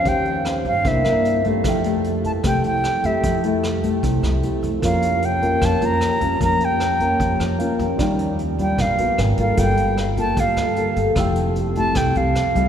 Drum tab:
HH |xxxxxxxx|xxxxxxxx|xxxxxxxx|xxxxxxxx|
SD |--r--r--|r---r-r-|--r--r--|r---r-r-|
BD |o--oo--o|o--oo--o|o--oo--o|o--oo--o|

HH |xxxxxxxx|xxxxxxxx|xxxxxxxx|xxxxxxxx|
SD |--r--r--|r---r-r-|--r--r--|r---r-r-|
BD |o--oo--o|o--oo--o|o--oo--o|o--oo--o|